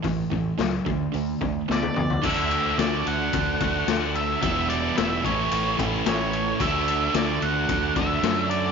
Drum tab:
CC |----------------|x---------------|----------------|----------------|
RD |----------------|--x-x-x-x-x-x-x-|x-x-x-x-x-x-x-x-|x-x-x-x-x-x-x-x-|
HH |o---o---o-------|----------------|----------------|----------------|
SD |----o-------o---|----o-------o---|----o-------o---|----o-------o---|
T1 |-------------o--|----------------|----------------|----------------|
T2 |--------------o-|----------------|----------------|----------------|
FT |---------------o|----------------|----------------|----------------|
BD |o-o---o---o-----|o-------o-o-----|o-----o---o-----|o-------o-o-----|